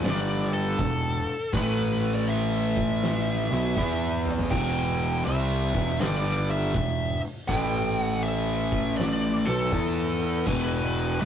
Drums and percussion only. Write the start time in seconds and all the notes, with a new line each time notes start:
0.05 snare, open hi-hat
0.79 kick, open hi-hat
1.53 kick, open hi-hat
2.28 open hi-hat
2.77 kick
3.02 snare, open hi-hat
3.77 kick, snare
4.25 mid tom
4.38 floor tom
4.51 kick, crash
5.26 open hi-hat
5.74 kick
6.00 snare, open hi-hat
6.74 kick, open hi-hat
7.49 kick, open hi-hat
8.24 open hi-hat
8.72 kick
8.98 snare, open hi-hat
9.72 kick, open hi-hat
10.47 kick, crash
11.22 open hi-hat